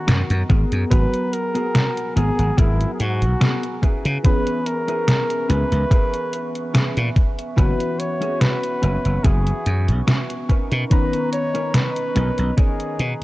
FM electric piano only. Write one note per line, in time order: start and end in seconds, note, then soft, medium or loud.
0.90 2.94 F#3 loud
0.90 2.95 B3 medium
0.90 2.95 F#4 medium
0.90 2.96 G#4 loud
4.24 6.28 E3 medium
4.24 6.28 B3 medium
4.24 6.29 C#4 medium
4.24 6.29 G#4 loud
7.56 9.61 E3 medium
7.56 9.61 B3 medium
7.56 9.62 C#4 medium
7.56 9.62 F#4 loud
10.90 12.94 D#3 loud
10.90 12.95 B3 medium
10.90 12.95 C#4 medium
10.90 12.96 A#5 loud